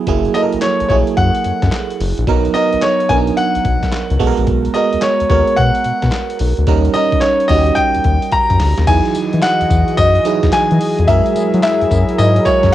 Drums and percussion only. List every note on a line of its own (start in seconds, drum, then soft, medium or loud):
0.07 kick loud
0.07 closed hi-hat medium
0.25 closed hi-hat soft
0.34 closed hi-hat medium
0.52 closed hi-hat soft
0.61 snare loud
0.61 clap loud
0.61 closed hi-hat medium
0.80 closed hi-hat soft
0.90 kick medium
0.90 closed hi-hat medium
1.07 closed hi-hat medium
1.17 kick medium
1.17 closed hi-hat medium
1.35 closed hi-hat medium
1.44 closed hi-hat medium
1.62 kick medium
1.62 snare medium
1.62 closed hi-hat medium
1.72 snare loud
1.72 clap medium
1.72 closed hi-hat medium
1.91 closed hi-hat medium
2.01 open hi-hat medium
2.18 closed hi-hat soft
2.27 kick loud
2.27 closed hi-hat medium
2.45 closed hi-hat soft
2.55 closed hi-hat medium
2.73 closed hi-hat soft
2.82 snare loud
2.82 clap loud
2.82 closed hi-hat medium
3.00 closed hi-hat soft
3.10 kick loud
3.10 closed hi-hat medium
3.27 closed hi-hat medium
3.37 closed hi-hat medium
3.55 closed hi-hat medium
3.65 kick loud
3.65 closed hi-hat medium
3.83 kick medium
3.83 snare medium
3.83 closed hi-hat medium
3.92 snare loud
3.92 clap medium
3.92 closed hi-hat medium
4.10 closed hi-hat medium
4.20 kick medium
4.20 open hi-hat medium
4.37 closed hi-hat soft
4.47 kick loud
4.47 closed hi-hat medium
4.65 closed hi-hat soft
4.74 closed hi-hat medium
4.93 closed hi-hat soft
5.02 snare loud
5.02 clap medium
5.02 closed hi-hat medium
5.20 closed hi-hat medium
5.30 kick medium
5.30 closed hi-hat medium
5.47 closed hi-hat medium
5.57 kick loud
5.57 closed hi-hat medium
5.75 closed hi-hat medium
5.84 closed hi-hat medium
6.02 kick loud
6.02 snare medium
6.02 closed hi-hat medium
6.12 snare loud
6.12 clap medium
6.12 closed hi-hat medium
6.30 closed hi-hat medium
6.39 open hi-hat medium
6.57 closed hi-hat medium
6.67 kick loud
6.67 closed hi-hat medium
6.85 closed hi-hat soft
6.94 closed hi-hat medium
7.12 kick medium
7.12 closed hi-hat soft
7.22 snare loud
7.22 clap loud
7.22 closed hi-hat medium
7.40 closed hi-hat medium
7.49 kick medium
7.49 open hi-hat medium
7.67 closed hi-hat medium
7.76 kick medium
7.76 closed hi-hat medium
7.94 closed hi-hat medium
8.04 kick medium
8.04 closed hi-hat medium
8.22 closed hi-hat medium
8.31 kick medium
8.31 closed hi-hat medium
8.50 kick medium
8.50 closed hi-hat medium
8.60 snare loud
8.60 open hi-hat medium
8.77 snare medium
8.77 closed hi-hat soft
8.87 kick loud
8.87 closed hi-hat medium
8.87 crash medium
8.87 tambourine medium
9.05 closed hi-hat soft
9.15 closed hi-hat medium
9.15 tambourine medium
9.33 closed hi-hat soft
9.42 snare loud
9.42 clap loud
9.42 closed hi-hat medium
9.42 tambourine loud
9.61 closed hi-hat medium
9.70 kick medium
9.70 closed hi-hat medium
9.70 tambourine medium
9.88 closed hi-hat medium
9.98 kick loud
9.98 closed hi-hat medium
9.98 tambourine medium
10.15 closed hi-hat medium
10.25 closed hi-hat medium
10.25 tambourine medium
10.43 kick medium
10.43 snare medium
10.43 closed hi-hat medium
10.53 snare loud
10.53 clap medium
10.53 closed hi-hat medium
10.53 tambourine medium
10.71 closed hi-hat medium
10.81 open hi-hat medium
10.99 closed hi-hat soft
11.08 kick loud
11.08 closed hi-hat medium
11.08 tambourine medium
11.26 closed hi-hat soft
11.36 closed hi-hat medium
11.36 tambourine medium
11.54 closed hi-hat soft
11.63 snare loud
11.63 clap loud
11.63 closed hi-hat medium
11.63 tambourine loud
11.81 closed hi-hat soft
11.91 kick loud
11.91 closed hi-hat medium
11.91 tambourine medium
12.09 closed hi-hat medium
12.19 closed hi-hat medium
12.19 tambourine medium
12.36 closed hi-hat medium
12.46 kick loud
12.46 closed hi-hat medium
12.46 tambourine medium
12.63 kick medium
12.63 snare medium
12.63 closed hi-hat medium